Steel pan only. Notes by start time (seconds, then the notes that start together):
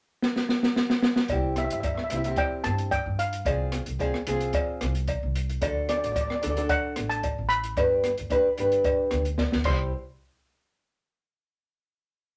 1.58 E5
1.65 E5
1.73 E5
1.80 E5
1.86 E5
1.95 E5
2.04 E5
2.10 E5
2.16 E5
2.25 E5
2.38 G5
2.64 A5
2.91 G5
3.19 F5
5.89 D5
5.97 D5
6.05 D5
6.12 D5
6.21 D5
6.28 D5
6.35 D5
6.42 D5
6.50 D5
6.58 D5
6.69 F#5
7.09 A5
7.49 B5
9.66 C6